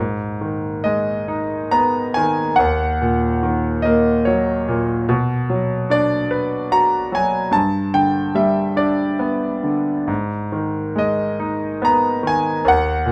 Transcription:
grand piano
Already playing: G#2
0.41 D#3
0.84 G#3 D#5
1.28 D#4
1.71 B3 A#5
2.14 D#3 G#5
2.56 D#2 F#5
3.01 A#2
3.43 D#3
3.82 A#3 D#5
4.25 F#3 C#5
4.68 A#2
5.09 B2
5.50 F#3
5.90 D4 D5
6.31 B4
6.72 F#4 A#5
7.12 F#3 G#5
7.51 G2 A5
7.94 D3 G5
8.35 G3 E5
8.76 D4 D5
9.19 B3
9.63 D3
10.07 G#2
10.52 D#3
10.96 G#3 D#5
11.40 D#4
11.82 B3 A#5
12.23 D#3
12.27 G#5
12.65 D#2 F#5
13.06 A#2

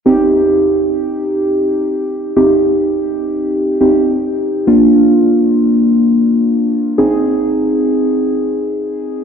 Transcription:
synth keys
0.06 C4 D#4 G4
2.36 C4 D#4 G4
3.81 C4 D#4 G4
4.67 A#3 D4 F4
6.98 C4 D#4 G#4

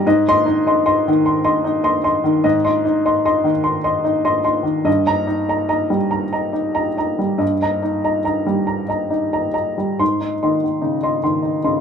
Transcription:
upright piano
0.06 G#2 D#5
0.29 D#5 C6
0.46 D#4
0.67 D#5 C6
0.86 D#5 C6
1.08 D#3
1.26 C6
1.45 D#5 C6
1.64 D#4
1.84 D#5 C6
2.04 D#5 C6
2.24 D#3
2.44 G#2 D#5
2.65 D#5 C6
2.85 D#4
3.06 D#5 C6
3.25 D#5 C6
3.44 D#3
3.64 C6
3.84 D#5 C6
4.04 D#4
4.25 D#5 C6
4.44 D#5 C6
4.63 D#3
4.85 G2 D#5
5.07 D#5 A#5
5.27 D#4
5.49 D#5 A#5
5.69 D#5 A#5
5.90 G3
6.11 A#5
6.33 D#5 A#5
6.53 D#4
6.74 D#5 A#5
6.97 D#5 A#5
7.19 G3
7.38 G2 D#5
7.62 D#5 A#5
7.83 D#4
8.04 D#5 A#5
8.24 D#5 A#5
8.46 G3
8.67 A#5
8.88 D#5 A#5
9.10 D#4
9.33 D#5 A#5
9.54 D#5 A#5
9.78 G3
9.99 G#2 C6
10.21 D#4
10.43 D#3 D#5 C6
10.64 D#3
10.82 C#3 D#4
11.03 D#5 C6
11.23 D#3 C6
11.43 D#4
11.64 C#3 D#5 C6

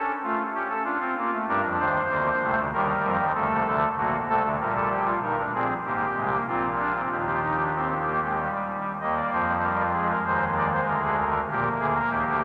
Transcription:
pipe organ
Already playing: C#4 A4
0.24 A3 F4
0.54 C#4 G4
0.69 A4
0.84 D4 F4
1.01 C4
1.17 A#3
1.33 A3
1.48 G2 G3 D4 A#4
1.63 F2 F3
1.79 D#2 D#3 C5
2.10 D2 D3 A#3
2.42 C2 C3 A3
2.58 D2 D3
2.73 D#2 D#3 G3 A#4
3.04 F2 F3
3.19 D#2 D#3
3.34 D2 D3 A3 A4
3.50 C2 C3
3.66 D2 D3
3.97 A#1 A#2 A#3 F#4
4.28 C2 C3 A3 A4
4.44 D2 D3
4.60 A#1 A#2 G3 A#4
4.75 A4
4.91 G4
5.07 F4
5.22 G1 G2 D#4 A#4
5.39 D4
5.54 A#1 A#2 C4 G#4
5.85 G#1 G#2 A#3 G4
6.17 C2 C3 G#3
6.32 A#3
6.47 A#1 A#2 C4 F4
6.79 D4
6.95 C4
7.11 D#2 D#3 G4
7.18 F4
7.26 F4 G4
7.44 D#4
7.60 D4
7.75 C4
8.06 A#3
8.22 G#3
8.38 G3
9.00 D#2 D#3 A#3 D#5
9.16 D5
9.32 F2 F3 C5
9.63 G3 A#4
9.94 G#3 G#4
10.09 A#4
10.25 D#2 D#3 C5
10.56 D5
10.72 C5
10.87 D2 D3 A#4
11.02 G#4
11.19 A#4
11.49 A#1 A#2 A#3 G4
11.80 D2 D3 G#4
11.95 A#4
12.10 D#2 D#3 G4
12.27 D2 D3

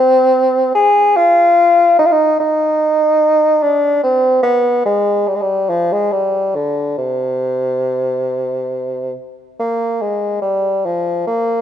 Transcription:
bassoon
Already playing: C4
0.75 G#4
1.16 F4
1.99 D#4
2.05 F4
2.12 D#4
2.40 D#4
3.62 D4
4.04 C4
4.43 B3
4.85 G#3
5.28 G3
5.35 G#3
5.41 G3
5.69 F3
5.92 G#3
6.12 G3
6.55 D3
6.98 C3
9.60 A#3
10.01 G#3
10.41 G3
10.86 F3
11.27 A#3

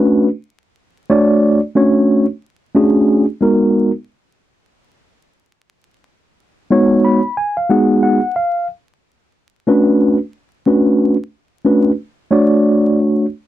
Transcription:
tine electric piano
Already playing: A3 C#4 D4 F#4 B4
1.09 A3 D4 F#4 C#5 D5
1.75 A3 C#4 D4 F#4 C#5
2.75 A3 C#4 D4 F#4 G#4
3.41 G#3 B3 D#4 F#4 A#4
6.70 G#3 B3 D#4 F#4 C#5
7.04 B5
7.37 G#5
7.57 F5
7.69 G#3 B3 D#4 F#4 G#4 F#5
8.03 F#5
8.36 F5
9.67 A3 C#4 D4 F#4 B4
10.66 A3 C#4 D4 F#4 B4
11.65 A3 C#4 D4 F#4 B4
12.31 A3 D4 F#4 C#5 D5

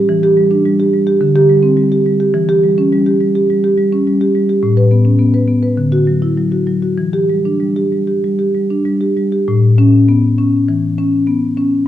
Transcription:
marimba
0.09 E3
0.23 G4
0.37 G3
0.51 D4
0.65 G3
0.80 G4
0.93 G3
1.07 G4
1.21 D3
1.36 G4
1.49 G3
1.63 C4
1.77 G3
1.92 G4
2.06 G3
2.20 G4
2.34 E3
2.49 G4
2.63 G3
2.78 C#4
2.92 G3
3.06 G4
3.20 G3
3.35 G4
3.50 G3
3.64 G4
3.77 G3
3.92 C#4
4.07 G3
4.21 G4
4.35 G3
4.49 G4
4.63 A2
4.77 B4
4.91 B3
5.05 C#4
5.19 B3
5.34 B4
5.48 B3
5.63 B4
5.77 D3
5.92 F#4
6.07 F#3
6.22 E4
6.37 F#3
6.52 F#4
6.67 F#3
6.82 F#4
6.98 E3
7.13 G4
7.29 G3
7.45 D4
7.60 G3
7.76 G4
7.92 G3
8.07 G4
8.24 G3
8.39 G4
8.55 G3
8.70 D4
8.85 G3
9.01 G4
9.17 G3
9.32 G4
9.48 A2
9.78 C#4
10.09 B3
10.38 C#4
10.69 E3
10.98 C#4
11.27 B3
11.57 C#4

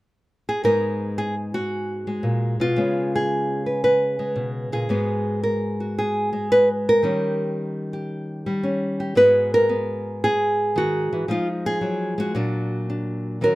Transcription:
nylon-string guitar
0.49 G#4
0.64 G#2 G#3 B3 D#4 A#4
1.18 G#4
1.54 F#4
2.07 G#3
2.23 A#2
2.60 B2 F4
2.76 C#3 G#3 B3
3.16 G#4
3.66 B4
3.84 B4
4.19 G#3
4.36 B2
4.72 A#2 G#4
4.89 G#2 G#3 B3 F#4
5.43 A#4
5.80 F#4
5.99 G#4
6.33 G#3
6.52 B4
6.89 A#4
7.03 D#3 G3 C#4 G4
7.93 G4
8.46 G3
8.63 C#4
9.00 G4
9.15 G#2 G#3 B3 F#4 B4
9.54 A#4
9.69 B3
10.24 G#4
10.76 D#3 F#4
11.13 E3
11.28 F3 G#3 D#4 F4
11.66 G#4
11.81 F#3
12.18 G#3 F#4
12.35 A#2 F#3 D4
12.90 D4
13.41 D#3 F#3 C#4 F#4 A#4

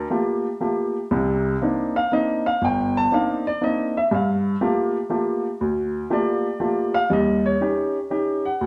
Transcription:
grand piano
0.10 A3 A#3 F4 G4
0.60 A3 A#3 F4 G4
1.11 C2 C3
1.62 A#3 C4 D4 D#4
1.96 F5
2.12 A#3 C4 D4 D#4 D#5
2.46 F5
2.62 G1 G5
2.97 A5
3.12 A#3 C4 D4 D#4 F5
3.47 D5
3.61 A#3 C4 D4 D#4 D#5
3.97 E5
4.11 G2 F5
4.61 A3 A#3 F4 G4
5.10 A3 A#3 F4 G4
5.61 D2
6.10 A3 A#3 F4 G4 D5
6.60 A3 A#3 F4 G4
6.94 F5
7.10 D#2 G3 D#5
7.46 C#5
7.61 C#4 D#4 G4
8.10 C#4 D#4 G4
8.45 F#5
8.61 D2

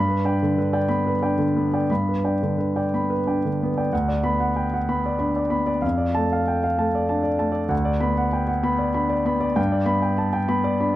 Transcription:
grand piano
Already playing: G2 B5
0.08 B4
0.25 D4 D5 G5
0.42 D3
0.58 D3 B4
0.73 D5 G5
0.88 B3 B5
1.07 B4
1.22 D4 D5 G5
1.39 D3
1.56 B3 B4
1.73 D5 G5
1.90 G2 B5
2.09 B4
2.24 D4 D5 G5
2.43 D3
2.58 D3 B4
2.76 D5 G5
2.94 B3 B5
3.10 B4
3.27 D4 D5 G5
3.45 D3
3.63 B3 B4
3.77 D5 G5
3.93 D2 F#5
4.08 D5
4.24 B3 B5
4.40 F#5
4.56 G5
4.74 F#5
4.89 B3 B5
5.06 D5
5.19 D4 B5
5.36 D5
5.50 B3 B5
5.66 D5
5.82 F2 F5
5.98 D5
6.15 A3 A5
6.33 F5
6.48 G5
6.64 F5
6.78 A3 A5
6.95 D5
7.09 D4 A5
7.23 D5
7.39 A3 A5
7.52 D5
7.69 D2 F#5
7.85 D5
8.00 B3 B5
8.17 F#5
8.33 G5
8.48 F#5
8.63 B3 B5
8.78 D5
8.94 D4 B5
9.09 D5
9.25 B3 B5
9.40 D5
9.56 G2 G5
9.72 D5
9.86 B3 B5
10.02 G5
10.18 A5
10.33 G5
10.48 B3 B5
10.64 D5
10.79 D4 B5

